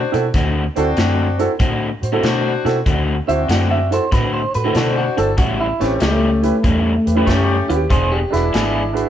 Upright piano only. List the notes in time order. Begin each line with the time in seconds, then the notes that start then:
0.12 C4 E4 F#4 A4
0.76 C4 E4 F#4 A4
1.38 C4 E4 F#4 A4
2.02 F#4 C5
2.12 C4 E4 F#4 A4
2.65 C4 E4 F#4 A4
3.27 C4 E4 F#4 C5
3.91 C4 E4 F#4 A4
4.55 F#4 A4
4.64 C4 E4 F#4 A4
5.17 C4 E4 F#4 A4
5.80 C#4 E4 G4 B4
6.43 C#4 E4 G4 B4
7.06 G4 B4
7.15 C#4 E4 G4 B4
7.68 C#4 E4 G4 B4
8.31 D4 F#4 G#4 B4
8.93 D4 F#4 G#4 B4